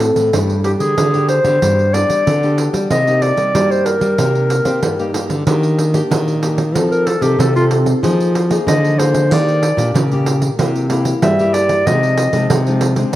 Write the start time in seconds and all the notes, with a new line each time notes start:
Already playing: A2 C4 F#4 A4
0.00 pandeiro
0.16 A2, pandeiro
0.33 G2 G3 B3 D4 G4, pandeiro
0.49 pandeiro
0.64 B3 D4 G4, pandeiro
0.80 D3 G#4, pandeiro
0.97 D3, pandeiro
1.13 B3 D4 G4, pandeiro
1.29 C5, pandeiro
1.44 D3 B3 D4 G4, pandeiro
1.62 G2 G3 B3 D4 G4, pandeiro
1.79 pandeiro
1.93 B3 D4 G4 D5, pandeiro
2.09 G3, pandeiro
2.26 D3, pandeiro
2.43 B3 D4 G4, pandeiro
2.58 pandeiro
2.73 G3, pandeiro
2.90 C3 A#3 D#4 G4 D#5, pandeiro
3.07 A#3 D#4 G4, pandeiro
3.22 D5, pandeiro
3.37 G3, pandeiro
3.55 G2 G3 A#3 D#4 G4, pandeiro
3.71 C5, pandeiro
3.85 A#4, pandeiro
4.01 G3, pandeiro
4.18 C3 A#3 D#4 G4, pandeiro
4.35 pandeiro
4.50 pandeiro
4.65 A#3 C4 D#4 G4, pandeiro
4.83 G2 G3, pandeiro
4.99 A#3 D#4 G4, pandeiro
5.14 A#3 D#4 G4, pandeiro
5.29 D3, pandeiro
5.47 D#3 A#3 D4 G4, pandeiro
5.63 pandeiro
5.79 pandeiro
5.94 A#3 D4 G4, pandeiro
6.11 A#2 D#3, pandeiro
6.28 pandeiro
6.43 A#3 D4 G4, pandeiro
6.58 pandeiro
6.75 F3 C4 D#4 A4, pandeiro
6.91 A#4, pandeiro
7.06 A4, pandeiro
7.21 C3 C4 D#4 G4 A4, pandeiro
7.39 C3 A4, pandeiro
7.56 C4 D#4 F4 A4, pandeiro
7.71 pandeiro
7.86 pandeiro
8.03 F3 A#3 D#4 G#4, pandeiro
8.20 pandeiro
8.35 pandeiro
8.49 A#3 D#4 G#4, pandeiro
8.67 D3 F3 D#5, pandeiro
8.85 pandeiro
8.99 A#3 D#4 G#4 C5, pandeiro
9.14 pandeiro
9.31 D#3 A#3 D4 G4 D5, pandeiro
9.48 pandeiro
9.63 pandeiro
9.77 A#2 A#3 D4 G4, pandeiro
9.94 A#2 C#3, pandeiro
10.12 A#3 G4, pandeiro
10.26 pandeiro
10.42 pandeiro
10.59 C3 A#3 E4 G4, pandeiro
10.76 pandeiro
10.90 A#3 E4 G4, pandeiro
11.05 pandeiro
11.22 G2 G3 E5, pandeiro
11.39 A#3 E4 G4, pandeiro
11.54 D5, pandeiro
11.69 pandeiro
11.86 C3 F3 G#3 D#4 D#5, pandeiro
12.03 pandeiro
12.18 pandeiro
12.33 C3 F3 G#3 D#4, pandeiro
12.50 C3, pandeiro
12.66 F3 G#3 D#4, pandeiro
12.81 pandeiro
12.96 G#3 C4 D4, pandeiro